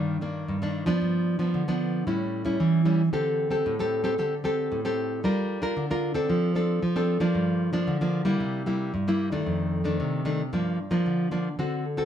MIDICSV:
0, 0, Header, 1, 2, 480
1, 0, Start_track
1, 0, Key_signature, -2, "minor"
1, 0, Tempo, 529101
1, 920, Time_signature, 4, 2, 24, 8
1, 10932, End_track
2, 0, Start_track
2, 0, Title_t, "Nylon-string guitar"
2, 0, Program_c, 0, 24
2, 0, Note_on_c, 0, 43, 71
2, 0, Note_on_c, 0, 51, 73
2, 0, Note_on_c, 0, 58, 64
2, 0, Note_on_c, 0, 62, 74
2, 153, Note_off_c, 0, 51, 0
2, 155, Note_off_c, 0, 58, 0
2, 156, Note_off_c, 0, 62, 0
2, 194, Note_on_c, 0, 51, 53
2, 200, Note_on_c, 0, 58, 57
2, 202, Note_on_c, 0, 62, 63
2, 416, Note_off_c, 0, 43, 0
2, 439, Note_on_c, 0, 43, 79
2, 519, Note_off_c, 0, 51, 0
2, 521, Note_off_c, 0, 58, 0
2, 523, Note_off_c, 0, 62, 0
2, 561, Note_on_c, 0, 51, 60
2, 563, Note_on_c, 0, 58, 59
2, 570, Note_on_c, 0, 62, 76
2, 762, Note_off_c, 0, 51, 0
2, 764, Note_off_c, 0, 58, 0
2, 765, Note_off_c, 0, 62, 0
2, 782, Note_on_c, 0, 53, 68
2, 789, Note_on_c, 0, 59, 72
2, 792, Note_on_c, 0, 62, 79
2, 895, Note_off_c, 0, 43, 0
2, 921, Note_on_c, 0, 43, 71
2, 1232, Note_off_c, 0, 53, 0
2, 1234, Note_off_c, 0, 59, 0
2, 1237, Note_off_c, 0, 62, 0
2, 1261, Note_on_c, 0, 53, 66
2, 1267, Note_on_c, 0, 59, 63
2, 1269, Note_on_c, 0, 62, 58
2, 1375, Note_off_c, 0, 43, 0
2, 1398, Note_on_c, 0, 50, 73
2, 1472, Note_off_c, 0, 53, 0
2, 1473, Note_off_c, 0, 59, 0
2, 1475, Note_off_c, 0, 62, 0
2, 1525, Note_on_c, 0, 53, 58
2, 1528, Note_on_c, 0, 59, 64
2, 1531, Note_on_c, 0, 62, 72
2, 1842, Note_off_c, 0, 53, 0
2, 1844, Note_off_c, 0, 59, 0
2, 1845, Note_off_c, 0, 62, 0
2, 1853, Note_off_c, 0, 50, 0
2, 1876, Note_on_c, 0, 45, 65
2, 1877, Note_on_c, 0, 55, 58
2, 1878, Note_on_c, 0, 61, 53
2, 1884, Note_on_c, 0, 64, 61
2, 2197, Note_off_c, 0, 55, 0
2, 2199, Note_off_c, 0, 61, 0
2, 2201, Note_off_c, 0, 64, 0
2, 2219, Note_on_c, 0, 55, 62
2, 2227, Note_on_c, 0, 61, 59
2, 2229, Note_on_c, 0, 64, 61
2, 2332, Note_off_c, 0, 45, 0
2, 2360, Note_on_c, 0, 52, 70
2, 2550, Note_off_c, 0, 55, 0
2, 2551, Note_off_c, 0, 61, 0
2, 2554, Note_off_c, 0, 64, 0
2, 2589, Note_on_c, 0, 55, 52
2, 2594, Note_on_c, 0, 61, 54
2, 2598, Note_on_c, 0, 64, 53
2, 2734, Note_off_c, 0, 55, 0
2, 2735, Note_off_c, 0, 61, 0
2, 2738, Note_off_c, 0, 64, 0
2, 2813, Note_off_c, 0, 52, 0
2, 2838, Note_on_c, 0, 50, 68
2, 2839, Note_on_c, 0, 60, 55
2, 2843, Note_on_c, 0, 67, 59
2, 2845, Note_on_c, 0, 69, 70
2, 3158, Note_off_c, 0, 60, 0
2, 3159, Note_off_c, 0, 67, 0
2, 3161, Note_off_c, 0, 69, 0
2, 3180, Note_on_c, 0, 60, 59
2, 3184, Note_on_c, 0, 67, 53
2, 3188, Note_on_c, 0, 69, 69
2, 3292, Note_off_c, 0, 50, 0
2, 3321, Note_on_c, 0, 45, 74
2, 3388, Note_off_c, 0, 60, 0
2, 3391, Note_off_c, 0, 67, 0
2, 3393, Note_off_c, 0, 69, 0
2, 3442, Note_on_c, 0, 60, 62
2, 3447, Note_on_c, 0, 67, 62
2, 3451, Note_on_c, 0, 69, 60
2, 3639, Note_off_c, 0, 60, 0
2, 3642, Note_off_c, 0, 67, 0
2, 3643, Note_off_c, 0, 69, 0
2, 3663, Note_on_c, 0, 60, 67
2, 3668, Note_on_c, 0, 67, 59
2, 3672, Note_on_c, 0, 69, 79
2, 3750, Note_off_c, 0, 60, 0
2, 3752, Note_off_c, 0, 67, 0
2, 3754, Note_off_c, 0, 69, 0
2, 3772, Note_off_c, 0, 45, 0
2, 3795, Note_on_c, 0, 50, 74
2, 3800, Note_on_c, 0, 60, 56
2, 3800, Note_on_c, 0, 67, 51
2, 3805, Note_on_c, 0, 69, 63
2, 3936, Note_off_c, 0, 60, 0
2, 3938, Note_off_c, 0, 67, 0
2, 3940, Note_off_c, 0, 69, 0
2, 4028, Note_on_c, 0, 60, 56
2, 4034, Note_on_c, 0, 67, 59
2, 4038, Note_on_c, 0, 69, 58
2, 4250, Note_off_c, 0, 50, 0
2, 4279, Note_on_c, 0, 45, 73
2, 4351, Note_off_c, 0, 60, 0
2, 4354, Note_off_c, 0, 67, 0
2, 4357, Note_off_c, 0, 69, 0
2, 4399, Note_on_c, 0, 60, 58
2, 4403, Note_on_c, 0, 67, 67
2, 4407, Note_on_c, 0, 69, 67
2, 4716, Note_off_c, 0, 60, 0
2, 4718, Note_off_c, 0, 67, 0
2, 4721, Note_off_c, 0, 69, 0
2, 4731, Note_off_c, 0, 45, 0
2, 4754, Note_on_c, 0, 55, 66
2, 4758, Note_on_c, 0, 62, 54
2, 4763, Note_on_c, 0, 65, 59
2, 4763, Note_on_c, 0, 70, 62
2, 5075, Note_off_c, 0, 62, 0
2, 5076, Note_off_c, 0, 65, 0
2, 5078, Note_off_c, 0, 70, 0
2, 5097, Note_on_c, 0, 62, 67
2, 5101, Note_on_c, 0, 65, 56
2, 5106, Note_on_c, 0, 70, 69
2, 5209, Note_off_c, 0, 55, 0
2, 5231, Note_on_c, 0, 50, 75
2, 5305, Note_off_c, 0, 62, 0
2, 5307, Note_off_c, 0, 65, 0
2, 5310, Note_off_c, 0, 70, 0
2, 5358, Note_on_c, 0, 62, 63
2, 5362, Note_on_c, 0, 65, 62
2, 5363, Note_on_c, 0, 70, 67
2, 5556, Note_off_c, 0, 62, 0
2, 5558, Note_off_c, 0, 65, 0
2, 5558, Note_off_c, 0, 70, 0
2, 5575, Note_on_c, 0, 60, 77
2, 5581, Note_on_c, 0, 62, 72
2, 5582, Note_on_c, 0, 69, 71
2, 5686, Note_off_c, 0, 50, 0
2, 5711, Note_on_c, 0, 53, 70
2, 5904, Note_off_c, 0, 60, 0
2, 5906, Note_off_c, 0, 62, 0
2, 5907, Note_off_c, 0, 69, 0
2, 5945, Note_on_c, 0, 60, 52
2, 5949, Note_on_c, 0, 62, 57
2, 5953, Note_on_c, 0, 69, 62
2, 6166, Note_off_c, 0, 53, 0
2, 6172, Note_off_c, 0, 60, 0
2, 6174, Note_off_c, 0, 62, 0
2, 6175, Note_off_c, 0, 69, 0
2, 6192, Note_on_c, 0, 53, 66
2, 6313, Note_on_c, 0, 60, 59
2, 6316, Note_on_c, 0, 62, 68
2, 6321, Note_on_c, 0, 69, 65
2, 6513, Note_off_c, 0, 60, 0
2, 6514, Note_off_c, 0, 62, 0
2, 6517, Note_off_c, 0, 69, 0
2, 6524, Note_off_c, 0, 53, 0
2, 6535, Note_on_c, 0, 53, 65
2, 6538, Note_on_c, 0, 58, 70
2, 6543, Note_on_c, 0, 62, 72
2, 6663, Note_on_c, 0, 43, 72
2, 6983, Note_off_c, 0, 53, 0
2, 6986, Note_off_c, 0, 58, 0
2, 6987, Note_off_c, 0, 62, 0
2, 7010, Note_on_c, 0, 53, 66
2, 7015, Note_on_c, 0, 58, 60
2, 7017, Note_on_c, 0, 62, 70
2, 7122, Note_off_c, 0, 43, 0
2, 7143, Note_on_c, 0, 50, 69
2, 7221, Note_off_c, 0, 53, 0
2, 7223, Note_off_c, 0, 58, 0
2, 7225, Note_off_c, 0, 62, 0
2, 7269, Note_on_c, 0, 53, 65
2, 7272, Note_on_c, 0, 58, 59
2, 7275, Note_on_c, 0, 62, 67
2, 7471, Note_off_c, 0, 53, 0
2, 7473, Note_off_c, 0, 58, 0
2, 7473, Note_off_c, 0, 62, 0
2, 7484, Note_on_c, 0, 55, 71
2, 7490, Note_on_c, 0, 58, 65
2, 7495, Note_on_c, 0, 64, 76
2, 7602, Note_off_c, 0, 50, 0
2, 7623, Note_on_c, 0, 48, 67
2, 7819, Note_off_c, 0, 55, 0
2, 7822, Note_off_c, 0, 58, 0
2, 7823, Note_off_c, 0, 64, 0
2, 7859, Note_on_c, 0, 55, 53
2, 7864, Note_on_c, 0, 58, 55
2, 7867, Note_on_c, 0, 64, 61
2, 8082, Note_off_c, 0, 48, 0
2, 8089, Note_off_c, 0, 55, 0
2, 8092, Note_off_c, 0, 58, 0
2, 8094, Note_off_c, 0, 64, 0
2, 8108, Note_on_c, 0, 43, 73
2, 8235, Note_on_c, 0, 55, 65
2, 8239, Note_on_c, 0, 58, 58
2, 8243, Note_on_c, 0, 64, 70
2, 8434, Note_off_c, 0, 55, 0
2, 8436, Note_off_c, 0, 58, 0
2, 8438, Note_off_c, 0, 64, 0
2, 8454, Note_on_c, 0, 51, 59
2, 8459, Note_on_c, 0, 57, 68
2, 8459, Note_on_c, 0, 62, 71
2, 8566, Note_off_c, 0, 43, 0
2, 8587, Note_on_c, 0, 41, 74
2, 8905, Note_off_c, 0, 51, 0
2, 8906, Note_off_c, 0, 57, 0
2, 8907, Note_off_c, 0, 62, 0
2, 8929, Note_on_c, 0, 51, 59
2, 8935, Note_on_c, 0, 57, 55
2, 8940, Note_on_c, 0, 62, 70
2, 9046, Note_off_c, 0, 41, 0
2, 9071, Note_on_c, 0, 48, 78
2, 9263, Note_off_c, 0, 51, 0
2, 9266, Note_off_c, 0, 57, 0
2, 9266, Note_off_c, 0, 62, 0
2, 9300, Note_on_c, 0, 51, 65
2, 9304, Note_on_c, 0, 57, 60
2, 9307, Note_on_c, 0, 62, 67
2, 9448, Note_off_c, 0, 51, 0
2, 9449, Note_off_c, 0, 57, 0
2, 9451, Note_off_c, 0, 62, 0
2, 9528, Note_off_c, 0, 48, 0
2, 9550, Note_on_c, 0, 43, 73
2, 9552, Note_on_c, 0, 53, 60
2, 9555, Note_on_c, 0, 58, 61
2, 9561, Note_on_c, 0, 62, 66
2, 9778, Note_off_c, 0, 53, 0
2, 9780, Note_off_c, 0, 58, 0
2, 9781, Note_off_c, 0, 62, 0
2, 9896, Note_on_c, 0, 53, 63
2, 9899, Note_on_c, 0, 58, 64
2, 9904, Note_on_c, 0, 62, 63
2, 10009, Note_off_c, 0, 43, 0
2, 10034, Note_on_c, 0, 50, 71
2, 10228, Note_off_c, 0, 53, 0
2, 10230, Note_off_c, 0, 58, 0
2, 10231, Note_off_c, 0, 62, 0
2, 10264, Note_on_c, 0, 53, 60
2, 10268, Note_on_c, 0, 58, 55
2, 10272, Note_on_c, 0, 62, 58
2, 10411, Note_off_c, 0, 53, 0
2, 10413, Note_off_c, 0, 58, 0
2, 10416, Note_off_c, 0, 62, 0
2, 10492, Note_off_c, 0, 50, 0
2, 10512, Note_on_c, 0, 50, 71
2, 10514, Note_on_c, 0, 60, 57
2, 10519, Note_on_c, 0, 69, 64
2, 10520, Note_on_c, 0, 66, 51
2, 10741, Note_off_c, 0, 60, 0
2, 10742, Note_off_c, 0, 66, 0
2, 10744, Note_off_c, 0, 69, 0
2, 10862, Note_on_c, 0, 60, 65
2, 10867, Note_on_c, 0, 66, 60
2, 10870, Note_on_c, 0, 69, 70
2, 10932, Note_off_c, 0, 50, 0
2, 10932, Note_off_c, 0, 60, 0
2, 10932, Note_off_c, 0, 66, 0
2, 10932, Note_off_c, 0, 69, 0
2, 10932, End_track
0, 0, End_of_file